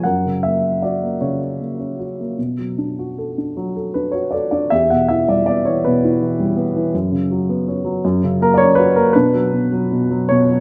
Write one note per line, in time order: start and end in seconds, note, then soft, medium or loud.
0.04 2.34 F#2 soft
0.04 1.17 A#4 soft
0.04 0.44 F#5 medium
0.26 1.20 C#3 soft
0.43 1.02 A#3 soft
0.43 0.83 E5 medium
0.82 1.40 F#4 soft
0.82 1.22 D5 soft
1.03 1.59 A#3 soft
1.21 2.35 C#3 soft
1.21 2.04 C#5 soft
1.41 1.98 F#4 soft
1.61 2.19 A#3 soft
1.79 2.36 C#4 soft
1.99 2.37 F#4 soft
2.20 2.38 A#3 soft
2.38 4.68 B2 soft
2.59 3.55 F#3 soft
2.78 3.36 D4 soft
2.99 4.13 F#4 soft
3.18 3.75 A4 soft
3.38 3.94 D4 soft
3.57 4.68 F#3 soft
3.76 4.32 A4 soft
3.94 4.50 D4 soft
3.94 4.14 B4 medium
4.12 4.70 F#4 soft
4.12 4.33 C#5 medium
4.31 4.70 A4 soft
4.31 4.50 D5 medium
4.51 4.71 D4 soft
4.51 4.71 D5 medium
4.70 6.89 E2 soft
4.70 5.80 G4 soft
4.70 4.90 E5 medium
4.90 5.85 B2 soft
4.90 5.10 F#5 medium
5.08 5.66 E3 soft
5.08 5.28 E5 medium
5.28 6.39 G3 soft
5.28 5.45 D5 medium
5.46 6.55 B3 soft
5.46 5.64 D5 medium
5.65 6.21 E3 soft
5.65 5.82 C#5 medium
5.85 6.92 B2 medium
5.85 6.63 B4 medium
6.05 6.92 E4 soft
6.22 6.75 E3 soft
6.40 6.92 G3 soft
6.56 6.92 B3 soft
6.76 6.93 E3 soft
6.94 8.01 F#2 soft
7.12 8.01 C#3 soft
7.31 7.83 F#3 soft
7.49 8.02 B3 soft
7.68 8.03 C#4 soft
7.85 8.03 F#3 soft
8.05 9.12 F#2 medium
8.24 9.12 C#3 soft
8.41 8.95 A#3 soft
8.41 8.56 A#4 medium
8.54 8.77 C#5 medium
8.54 8.59 D5 medium
8.61 9.14 C#4 medium
8.75 9.14 F#4 soft
8.75 8.95 B4 medium
8.96 9.14 A#3 soft
8.96 9.15 A#4 medium
9.13 9.51 B2 medium
9.13 10.60 D4 medium
9.13 10.60 B4 medium
9.34 9.71 F#3 soft
9.53 9.90 B2 soft
9.72 10.09 F#3 soft
9.92 10.29 B2 soft
10.10 10.49 F#3 soft
10.29 10.60 B2 medium
10.29 10.60 C#5 medium
10.51 10.60 F#3 soft